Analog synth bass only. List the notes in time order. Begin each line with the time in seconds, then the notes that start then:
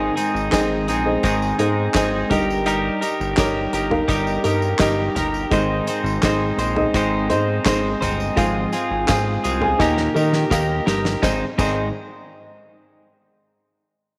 Already playing: G#1
0.34 G#1
0.53 G#1
0.88 A#1
1.24 G#1
1.59 G#2
1.95 G#1
2.31 G1
3.20 G1
3.38 G1
3.73 G1
4.09 G1
4.45 G2
4.80 G1
5.16 G1
5.52 G#1
6.04 G#1
6.23 G#1
6.58 A#1
6.95 G#1
7.30 G#2
7.66 G#1
8.01 G1
8.37 G#1
8.91 G#1
9.09 G#1
9.45 C2
9.80 D#2
10.16 D#3
10.51 D#2
10.87 G1
11.23 G#1
11.58 G#1